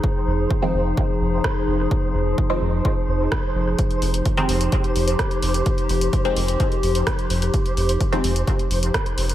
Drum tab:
HH |----------------|----------------|xxoxxxoxxxoxxxox|xxoxxxoxxxoxxxox|
SD |------------r---|------------r---|------------r---|------------r---|
BD |o---o---o---o---|o---o---o---o---|o---o---o---o---|o---o---o---o---|

HH |xxoxxxoxxxoxxxox|
SD |------------r---|
BD |o---o---o---o---|